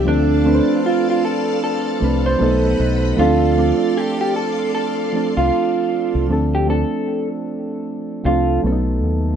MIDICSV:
0, 0, Header, 1, 5, 480
1, 0, Start_track
1, 0, Tempo, 779221
1, 35, Time_signature, 4, 2, 24, 8
1, 5766, End_track
2, 0, Start_track
2, 0, Title_t, "String machine"
2, 0, Program_c, 0, 50
2, 35, Note_on_c, 0, 74, 77
2, 35, Note_on_c, 0, 81, 92
2, 36, Note_on_c, 0, 69, 90
2, 36, Note_on_c, 0, 77, 76
2, 1461, Note_off_c, 0, 74, 0
2, 1461, Note_off_c, 0, 77, 0
2, 1461, Note_off_c, 0, 81, 0
2, 1475, Note_on_c, 0, 75, 65
2, 1475, Note_on_c, 0, 78, 63
2, 1476, Note_on_c, 0, 83, 71
2, 1937, Note_off_c, 0, 69, 0
2, 1950, Note_off_c, 0, 75, 0
2, 1950, Note_off_c, 0, 78, 0
2, 1951, Note_off_c, 0, 83, 0
2, 1956, Note_on_c, 0, 77, 74
2, 1957, Note_on_c, 0, 69, 79
2, 1957, Note_on_c, 0, 84, 80
2, 1959, Note_on_c, 0, 74, 74
2, 3857, Note_off_c, 0, 69, 0
2, 3857, Note_off_c, 0, 77, 0
2, 3857, Note_off_c, 0, 84, 0
2, 3858, Note_off_c, 0, 74, 0
2, 5766, End_track
3, 0, Start_track
3, 0, Title_t, "Clean electric guitar"
3, 0, Program_c, 1, 27
3, 48, Note_on_c, 1, 62, 109
3, 497, Note_off_c, 1, 62, 0
3, 531, Note_on_c, 1, 65, 82
3, 655, Note_off_c, 1, 65, 0
3, 677, Note_on_c, 1, 65, 76
3, 755, Note_off_c, 1, 65, 0
3, 768, Note_on_c, 1, 69, 73
3, 978, Note_off_c, 1, 69, 0
3, 1008, Note_on_c, 1, 69, 99
3, 1365, Note_off_c, 1, 69, 0
3, 1393, Note_on_c, 1, 72, 75
3, 1937, Note_off_c, 1, 72, 0
3, 1967, Note_on_c, 1, 65, 103
3, 2448, Note_off_c, 1, 65, 0
3, 2448, Note_on_c, 1, 67, 81
3, 2573, Note_off_c, 1, 67, 0
3, 2593, Note_on_c, 1, 67, 80
3, 2672, Note_off_c, 1, 67, 0
3, 2687, Note_on_c, 1, 69, 74
3, 2898, Note_off_c, 1, 69, 0
3, 2924, Note_on_c, 1, 69, 82
3, 3282, Note_off_c, 1, 69, 0
3, 3309, Note_on_c, 1, 65, 73
3, 3855, Note_off_c, 1, 65, 0
3, 4033, Note_on_c, 1, 67, 65
3, 4112, Note_off_c, 1, 67, 0
3, 4127, Note_on_c, 1, 69, 78
3, 4484, Note_off_c, 1, 69, 0
3, 5088, Note_on_c, 1, 65, 64
3, 5298, Note_off_c, 1, 65, 0
3, 5766, End_track
4, 0, Start_track
4, 0, Title_t, "Synth keys"
4, 0, Program_c, 2, 88
4, 0, Control_c, 2, 64, 127
4, 27, Note_on_c, 2, 53, 76
4, 32, Note_on_c, 2, 57, 64
4, 40, Note_on_c, 2, 60, 72
4, 44, Control_c, 2, 64, 0
4, 46, Note_on_c, 2, 62, 64
4, 53, Note_on_c, 2, 69, 83
4, 161, Control_c, 2, 64, 127
4, 258, Note_off_c, 2, 53, 0
4, 261, Note_off_c, 2, 57, 0
4, 265, Note_off_c, 2, 60, 0
4, 268, Note_off_c, 2, 62, 0
4, 269, Note_on_c, 2, 53, 70
4, 271, Note_off_c, 2, 69, 0
4, 276, Note_on_c, 2, 57, 70
4, 283, Note_on_c, 2, 60, 73
4, 290, Note_on_c, 2, 62, 74
4, 296, Note_on_c, 2, 71, 57
4, 334, Note_off_c, 2, 71, 0
4, 336, Note_on_c, 2, 72, 80
4, 1180, Note_off_c, 2, 53, 0
4, 1183, Note_off_c, 2, 57, 0
4, 1187, Note_off_c, 2, 60, 0
4, 1190, Note_off_c, 2, 62, 0
4, 1213, Note_off_c, 2, 72, 0
4, 1232, Note_on_c, 2, 53, 65
4, 1239, Note_on_c, 2, 57, 65
4, 1246, Note_on_c, 2, 60, 57
4, 1251, Note_on_c, 2, 62, 57
4, 1258, Note_on_c, 2, 71, 67
4, 1469, Note_off_c, 2, 57, 0
4, 1470, Note_on_c, 2, 54, 71
4, 1474, Note_off_c, 2, 53, 0
4, 1476, Note_on_c, 2, 57, 67
4, 1480, Note_off_c, 2, 60, 0
4, 1483, Note_off_c, 2, 62, 0
4, 1483, Control_c, 2, 64, 0
4, 1483, Note_on_c, 2, 59, 73
4, 1487, Note_off_c, 2, 71, 0
4, 1491, Note_on_c, 2, 63, 76
4, 1497, Note_on_c, 2, 69, 81
4, 1605, Control_c, 2, 64, 127
4, 1927, Note_off_c, 2, 54, 0
4, 1929, Note_off_c, 2, 57, 0
4, 1933, Note_off_c, 2, 59, 0
4, 1937, Note_off_c, 2, 63, 0
4, 1940, Note_off_c, 2, 69, 0
4, 1950, Note_on_c, 2, 53, 78
4, 1956, Note_on_c, 2, 57, 80
4, 1963, Control_c, 2, 64, 0
4, 1963, Note_on_c, 2, 60, 76
4, 1970, Note_on_c, 2, 62, 83
4, 1976, Note_on_c, 2, 69, 93
4, 2083, Control_c, 2, 64, 127
4, 2180, Note_off_c, 2, 53, 0
4, 2183, Note_off_c, 2, 57, 0
4, 2186, Note_off_c, 2, 60, 0
4, 2189, Note_off_c, 2, 62, 0
4, 2193, Note_off_c, 2, 69, 0
4, 2193, Note_on_c, 2, 53, 70
4, 2200, Note_on_c, 2, 57, 70
4, 2206, Note_on_c, 2, 60, 67
4, 2212, Note_on_c, 2, 62, 63
4, 2220, Note_on_c, 2, 69, 88
4, 3102, Note_off_c, 2, 53, 0
4, 3105, Note_off_c, 2, 57, 0
4, 3108, Note_off_c, 2, 60, 0
4, 3111, Note_off_c, 2, 62, 0
4, 3115, Note_off_c, 2, 69, 0
4, 3157, Note_on_c, 2, 53, 67
4, 3164, Note_on_c, 2, 57, 58
4, 3170, Note_on_c, 2, 60, 60
4, 3177, Note_on_c, 2, 62, 53
4, 3183, Note_on_c, 2, 69, 73
4, 3837, Note_off_c, 2, 53, 0
4, 3840, Note_off_c, 2, 57, 0
4, 3843, Note_off_c, 2, 60, 0
4, 3847, Note_off_c, 2, 62, 0
4, 3850, Note_off_c, 2, 69, 0
4, 3870, Note_on_c, 2, 53, 73
4, 3877, Note_on_c, 2, 57, 52
4, 3882, Note_on_c, 2, 60, 67
4, 3884, Control_c, 2, 64, 0
4, 3890, Note_on_c, 2, 62, 60
4, 3896, Note_on_c, 2, 69, 76
4, 3972, Control_c, 2, 64, 127
4, 4100, Note_off_c, 2, 53, 0
4, 4103, Note_off_c, 2, 57, 0
4, 4106, Note_off_c, 2, 60, 0
4, 4106, Note_on_c, 2, 53, 64
4, 4109, Note_off_c, 2, 62, 0
4, 4112, Note_on_c, 2, 57, 60
4, 4113, Note_off_c, 2, 69, 0
4, 4120, Note_on_c, 2, 60, 61
4, 4126, Note_on_c, 2, 62, 71
4, 4134, Note_on_c, 2, 69, 71
4, 5018, Note_off_c, 2, 53, 0
4, 5021, Note_off_c, 2, 57, 0
4, 5026, Note_off_c, 2, 60, 0
4, 5028, Note_off_c, 2, 62, 0
4, 5032, Note_off_c, 2, 69, 0
4, 5074, Note_on_c, 2, 53, 59
4, 5081, Note_on_c, 2, 57, 55
4, 5087, Note_on_c, 2, 60, 58
4, 5094, Note_on_c, 2, 62, 56
4, 5100, Note_on_c, 2, 69, 70
4, 5311, Note_off_c, 2, 57, 0
4, 5312, Note_on_c, 2, 54, 62
4, 5315, Note_off_c, 2, 53, 0
4, 5319, Note_on_c, 2, 57, 64
4, 5321, Note_off_c, 2, 60, 0
4, 5324, Note_off_c, 2, 62, 0
4, 5324, Control_c, 2, 64, 0
4, 5326, Note_on_c, 2, 59, 57
4, 5328, Note_off_c, 2, 69, 0
4, 5332, Note_on_c, 2, 61, 48
4, 5339, Note_on_c, 2, 69, 72
4, 5372, Note_off_c, 2, 61, 0
4, 5373, Note_on_c, 2, 63, 63
4, 5417, Control_c, 2, 64, 127
4, 5766, Note_off_c, 2, 54, 0
4, 5766, Note_off_c, 2, 57, 0
4, 5766, Note_off_c, 2, 59, 0
4, 5766, Note_off_c, 2, 63, 0
4, 5766, Note_off_c, 2, 69, 0
4, 5766, End_track
5, 0, Start_track
5, 0, Title_t, "Fingered electric bass"
5, 0, Program_c, 3, 33
5, 44, Note_on_c, 3, 38, 109
5, 368, Note_off_c, 3, 38, 0
5, 1244, Note_on_c, 3, 36, 80
5, 1445, Note_off_c, 3, 36, 0
5, 1484, Note_on_c, 3, 35, 93
5, 1684, Note_off_c, 3, 35, 0
5, 1723, Note_on_c, 3, 35, 97
5, 1924, Note_off_c, 3, 35, 0
5, 1962, Note_on_c, 3, 38, 109
5, 2288, Note_off_c, 3, 38, 0
5, 3309, Note_on_c, 3, 36, 82
5, 3386, Note_off_c, 3, 36, 0
5, 3788, Note_on_c, 3, 36, 80
5, 3865, Note_off_c, 3, 36, 0
5, 3882, Note_on_c, 3, 38, 96
5, 4207, Note_off_c, 3, 38, 0
5, 5083, Note_on_c, 3, 36, 92
5, 5284, Note_off_c, 3, 36, 0
5, 5321, Note_on_c, 3, 35, 90
5, 5564, Note_off_c, 3, 35, 0
5, 5564, Note_on_c, 3, 39, 79
5, 5765, Note_off_c, 3, 39, 0
5, 5766, End_track
0, 0, End_of_file